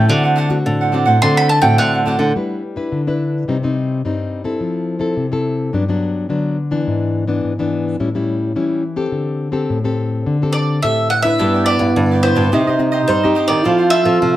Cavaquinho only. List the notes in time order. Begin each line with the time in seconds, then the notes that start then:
0.09 D4 C5 D5 F#5
0.23 C5 D5 F#5
0.36 D4 C5 D5 F#5
0.50 muted cavaquinho stroke
0.81 C5 D5 F#5
0.92 D4 C5 D5 F#5
1.05 C5 D5 F#5
1.22 D4 C5 D5 F#5
1.36 C5 D5 F#5
1.49 muted cavaquinho stroke
1.61 C5 D5 F#5
1.94 C5 D5 F#5
2.06 D4 C5 D5 F#5
2.18 C5 D5 F#5
11.38 E4 G4 B4 D5
11.54 G4 B4 D5
11.66 E4 G4 B4 D5
11.80 muted cavaquinho stroke
12.11 G4 B4 D5
12.23 E4 G4 B4 D5
12.35 G4 B4 D5
12.52 D#4 G4 C5 D#5
12.67 G4 C5 D#5
12.79 muted cavaquinho stroke
12.92 G4 C5 D#5
13.23 G4 C5 D#5
13.35 D#4 G4 C5 D#5
13.48 G4 C5 D#5
13.64 E4 A4 C5 F5
13.78 A4 C5 F5
13.91 E4 A4 C5 F5
14.04 muted cavaquinho stroke